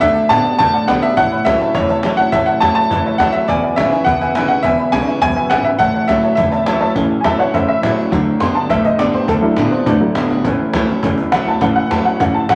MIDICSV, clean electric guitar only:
0, 0, Header, 1, 2, 480
1, 0, Start_track
1, 0, Key_signature, 3, "major"
1, 0, Tempo, 290276
1, 20, Time_signature, 4, 2, 24, 8
1, 20753, End_track
2, 0, Start_track
2, 0, Title_t, "Clean electric guitar"
2, 0, Program_c, 0, 27
2, 34, Note_on_c, 0, 50, 85
2, 43, Note_on_c, 0, 57, 93
2, 456, Note_off_c, 0, 50, 0
2, 461, Note_off_c, 0, 57, 0
2, 508, Note_on_c, 0, 50, 83
2, 519, Note_on_c, 0, 59, 91
2, 932, Note_off_c, 0, 50, 0
2, 938, Note_off_c, 0, 59, 0
2, 975, Note_on_c, 0, 50, 88
2, 985, Note_on_c, 0, 57, 99
2, 1405, Note_off_c, 0, 50, 0
2, 1410, Note_off_c, 0, 57, 0
2, 1456, Note_on_c, 0, 50, 95
2, 1462, Note_on_c, 0, 59, 91
2, 1884, Note_off_c, 0, 50, 0
2, 1888, Note_off_c, 0, 59, 0
2, 1934, Note_on_c, 0, 45, 81
2, 1943, Note_on_c, 0, 52, 87
2, 2362, Note_off_c, 0, 45, 0
2, 2367, Note_off_c, 0, 52, 0
2, 2408, Note_on_c, 0, 45, 84
2, 2414, Note_on_c, 0, 54, 94
2, 2839, Note_off_c, 0, 45, 0
2, 2842, Note_off_c, 0, 54, 0
2, 2893, Note_on_c, 0, 45, 76
2, 2901, Note_on_c, 0, 52, 99
2, 3320, Note_off_c, 0, 45, 0
2, 3324, Note_off_c, 0, 52, 0
2, 3373, Note_on_c, 0, 45, 87
2, 3382, Note_on_c, 0, 54, 96
2, 3799, Note_off_c, 0, 45, 0
2, 3804, Note_off_c, 0, 54, 0
2, 3846, Note_on_c, 0, 45, 92
2, 3855, Note_on_c, 0, 52, 100
2, 4275, Note_off_c, 0, 45, 0
2, 4280, Note_off_c, 0, 52, 0
2, 4325, Note_on_c, 0, 45, 91
2, 4329, Note_on_c, 0, 54, 96
2, 4754, Note_off_c, 0, 45, 0
2, 4756, Note_off_c, 0, 54, 0
2, 4801, Note_on_c, 0, 45, 89
2, 4809, Note_on_c, 0, 52, 98
2, 5231, Note_off_c, 0, 45, 0
2, 5235, Note_off_c, 0, 52, 0
2, 5288, Note_on_c, 0, 45, 78
2, 5294, Note_on_c, 0, 54, 90
2, 5714, Note_off_c, 0, 45, 0
2, 5717, Note_off_c, 0, 54, 0
2, 5766, Note_on_c, 0, 40, 84
2, 5775, Note_on_c, 0, 47, 96
2, 6192, Note_off_c, 0, 40, 0
2, 6197, Note_off_c, 0, 47, 0
2, 6243, Note_on_c, 0, 40, 82
2, 6244, Note_on_c, 0, 49, 103
2, 6670, Note_off_c, 0, 40, 0
2, 6671, Note_off_c, 0, 49, 0
2, 6709, Note_on_c, 0, 40, 97
2, 6718, Note_on_c, 0, 47, 95
2, 7142, Note_off_c, 0, 40, 0
2, 7147, Note_off_c, 0, 47, 0
2, 7185, Note_on_c, 0, 40, 88
2, 7196, Note_on_c, 0, 49, 99
2, 7620, Note_off_c, 0, 40, 0
2, 7625, Note_off_c, 0, 49, 0
2, 7668, Note_on_c, 0, 40, 85
2, 7674, Note_on_c, 0, 47, 85
2, 8100, Note_off_c, 0, 40, 0
2, 8104, Note_off_c, 0, 47, 0
2, 8150, Note_on_c, 0, 40, 83
2, 8153, Note_on_c, 0, 49, 100
2, 8581, Note_off_c, 0, 40, 0
2, 8583, Note_off_c, 0, 49, 0
2, 8614, Note_on_c, 0, 40, 91
2, 8622, Note_on_c, 0, 47, 95
2, 9053, Note_off_c, 0, 40, 0
2, 9057, Note_off_c, 0, 47, 0
2, 9098, Note_on_c, 0, 40, 93
2, 9111, Note_on_c, 0, 49, 102
2, 9534, Note_off_c, 0, 40, 0
2, 9541, Note_off_c, 0, 49, 0
2, 9571, Note_on_c, 0, 45, 85
2, 9583, Note_on_c, 0, 52, 85
2, 10011, Note_off_c, 0, 45, 0
2, 10017, Note_off_c, 0, 52, 0
2, 10055, Note_on_c, 0, 45, 79
2, 10068, Note_on_c, 0, 54, 104
2, 10493, Note_off_c, 0, 45, 0
2, 10499, Note_off_c, 0, 54, 0
2, 10557, Note_on_c, 0, 52, 92
2, 10983, Note_off_c, 0, 52, 0
2, 11032, Note_on_c, 0, 45, 86
2, 11042, Note_on_c, 0, 54, 100
2, 11461, Note_off_c, 0, 45, 0
2, 11466, Note_off_c, 0, 54, 0
2, 11510, Note_on_c, 0, 45, 83
2, 11513, Note_on_c, 0, 52, 98
2, 11940, Note_off_c, 0, 45, 0
2, 11942, Note_off_c, 0, 52, 0
2, 11975, Note_on_c, 0, 45, 90
2, 11984, Note_on_c, 0, 54, 100
2, 12413, Note_off_c, 0, 45, 0
2, 12417, Note_off_c, 0, 54, 0
2, 12469, Note_on_c, 0, 45, 83
2, 12471, Note_on_c, 0, 52, 94
2, 12900, Note_off_c, 0, 45, 0
2, 12901, Note_off_c, 0, 52, 0
2, 12947, Note_on_c, 0, 45, 92
2, 12957, Note_on_c, 0, 54, 111
2, 13380, Note_off_c, 0, 45, 0
2, 13385, Note_off_c, 0, 54, 0
2, 13417, Note_on_c, 0, 50, 86
2, 13427, Note_on_c, 0, 57, 94
2, 13855, Note_off_c, 0, 50, 0
2, 13860, Note_off_c, 0, 57, 0
2, 13892, Note_on_c, 0, 50, 91
2, 13901, Note_on_c, 0, 59, 84
2, 14333, Note_off_c, 0, 50, 0
2, 14338, Note_off_c, 0, 59, 0
2, 14377, Note_on_c, 0, 50, 93
2, 14393, Note_on_c, 0, 57, 96
2, 14817, Note_off_c, 0, 50, 0
2, 14824, Note_off_c, 0, 57, 0
2, 14861, Note_on_c, 0, 50, 94
2, 14876, Note_on_c, 0, 59, 101
2, 15299, Note_off_c, 0, 50, 0
2, 15307, Note_off_c, 0, 59, 0
2, 15345, Note_on_c, 0, 50, 79
2, 15349, Note_on_c, 0, 57, 99
2, 15782, Note_off_c, 0, 50, 0
2, 15784, Note_off_c, 0, 57, 0
2, 15826, Note_on_c, 0, 50, 98
2, 15835, Note_on_c, 0, 59, 99
2, 16263, Note_off_c, 0, 50, 0
2, 16268, Note_off_c, 0, 59, 0
2, 16317, Note_on_c, 0, 50, 90
2, 16323, Note_on_c, 0, 57, 106
2, 16750, Note_off_c, 0, 50, 0
2, 16753, Note_off_c, 0, 57, 0
2, 16786, Note_on_c, 0, 50, 97
2, 16788, Note_on_c, 0, 59, 101
2, 17226, Note_off_c, 0, 50, 0
2, 17227, Note_off_c, 0, 59, 0
2, 17285, Note_on_c, 0, 45, 87
2, 17296, Note_on_c, 0, 52, 90
2, 17716, Note_off_c, 0, 45, 0
2, 17722, Note_off_c, 0, 52, 0
2, 17763, Note_on_c, 0, 45, 98
2, 17772, Note_on_c, 0, 54, 92
2, 18197, Note_off_c, 0, 45, 0
2, 18201, Note_off_c, 0, 54, 0
2, 18243, Note_on_c, 0, 45, 81
2, 18248, Note_on_c, 0, 52, 101
2, 18678, Note_off_c, 0, 45, 0
2, 18680, Note_off_c, 0, 52, 0
2, 18722, Note_on_c, 0, 45, 91
2, 18737, Note_on_c, 0, 54, 104
2, 19158, Note_off_c, 0, 45, 0
2, 19166, Note_off_c, 0, 54, 0
2, 19195, Note_on_c, 0, 45, 84
2, 19208, Note_on_c, 0, 52, 104
2, 19636, Note_off_c, 0, 45, 0
2, 19643, Note_off_c, 0, 52, 0
2, 19694, Note_on_c, 0, 45, 95
2, 19696, Note_on_c, 0, 54, 100
2, 20127, Note_off_c, 0, 45, 0
2, 20128, Note_off_c, 0, 54, 0
2, 20180, Note_on_c, 0, 45, 94
2, 20189, Note_on_c, 0, 52, 98
2, 20611, Note_off_c, 0, 45, 0
2, 20616, Note_off_c, 0, 52, 0
2, 20655, Note_on_c, 0, 45, 85
2, 20667, Note_on_c, 0, 54, 96
2, 20753, Note_off_c, 0, 45, 0
2, 20753, Note_off_c, 0, 54, 0
2, 20753, End_track
0, 0, End_of_file